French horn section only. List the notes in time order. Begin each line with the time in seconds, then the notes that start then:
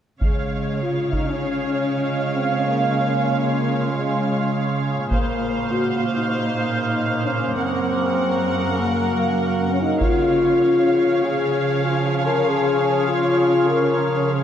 0.21 G#3
0.82 F4
1.13 D#4
1.28 C#4
2.36 C4
2.67 A#3
3.89 G#3
5.12 A#3
5.72 F#4
6.03 F4
6.17 D#4
7.25 C#4
7.56 C4
8.79 A#3
9.71 C#4
9.82 D#4
10.03 F4
11.23 G#4
11.85 F4
12.07 F4
12.27 A#4
12.47 G#4
13.08 F4
13.68 A#4
14.30 G#4